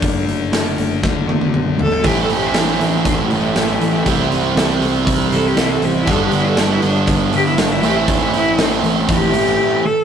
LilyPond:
<<
  \new Staff \with { instrumentName = "Cello" } { \time 4/4 \key a \dorian \tempo 4 = 119 r2. r8 a'8 | g'16 a'16 g'16 e'16 d'16 e'16 d'16 d'16 a16 g16 a4.~ | a4. r4 a'16 g'16 e'16 a'16 g'16 e'16 | a'16 g'16 e'16 a'16 g'16 e'16 d'8 r8 g'16 e'16 d'16 e'16 g'16 e'16 |
d'16 e'16 e'4 r8 g'4. a'8 | }
  \new Staff \with { instrumentName = "Distorted electric guitar" } { \time 4/4 \key a \dorian r1 | <a, e a c' e'>1 | <c g c' e'>1 | <g, d g b d'>2.~ <g, d g b d'>8 <a, e a c' e'>8~ |
<a, e a c' e'>2.~ <a, e a c' e'>8 r8 | }
  \new Staff \with { instrumentName = "Clean electric guitar" } { \clef bass \time 4/4 \key a \dorian <fis a d'>8 <fis a>8 <fis a d'>8 <fis a>8 <fis a>8 <fis a d'>8 <fis a>8 <fis a>8 | <a, e g>8 <a, e>8 <a, e g>8 <a, e>8 <a, e>8 <a, e g>8 <a, e>8 <a, e>8 | <c e g>8 <c e>8 <c e g>8 <c e>8 <c e>8 <c e g>8 <c e>8 <c e>8 | <g, d g>8 <g, d>8 <g, d g>8 d8 <g, d>8 <g, d g>8 <g, d>8 <a, e a>8 |
<a, e a>8 <a, e>8 <a, e a>8 <a, e>8 <a, e>8 <a, e a>8 <a, e>8 <a, e>8 | }
  \new Staff \with { instrumentName = "Distorted electric guitar" } { \clef bass \time 4/4 \key a \dorian <d a d'>2 <d a d'>8 <d a d'>4 r8 | <a, e a>2~ <a, e a>8 <a, e a>8 <a, e a>4 | <c g c'>2~ <c g c'>8 <c g c'>8 <c g c'>4 | <g, d g>2~ <g, d g>8 <g, d g>8 <g, d g>8 <a, e a>8~ |
<a, e a>2 <a, e a>8 <a, e a>4 r8 | }
  \new Staff \with { instrumentName = "Picked electric bass" } { \clef bass \time 4/4 \key a \dorian fis,,8 fis,,8 fis,,8 fis,,8 fis,,4 fis,,8 gis,,8 | a,,8 a,,8 a,,8 a,,8 a,,4 a,,8 a,,8 | c,8 c,8 c,8 c,8 c,4 c,8 a,,8 | g,,8 g,,8 g,,8 g,,8 g,,4 gis,,8 a,,8 |
a,,8 a,,8 a,,8 a,,8 a,,4 r4 | }
  \new DrumStaff \with { instrumentName = "Drums" } \drummode { \time 4/4 <hho bd>8 hho8 <hho sn>8 hho8 <bd sn>8 tommh16 tommh16 toml8 tomfh16 tomfh16 | <hho bd>8 hho8 <hho sn>8 hho8 <hho bd>8 hho8 <hho sn>8 hho8 | <hho bd>8 hho8 <hho sn>8 hho8 <hho bd>8 hho16 sn16 <hho sn>8 hho8 | <hho bd>8 hho8 <hho sn>8 hho8 <hho bd>8 hho16 sn16 <hho sn>8 hho8 |
<hho bd>8 hho8 <hho sn>8 hho8 <hho bd>8 hho16 sn16 r4 | }
>>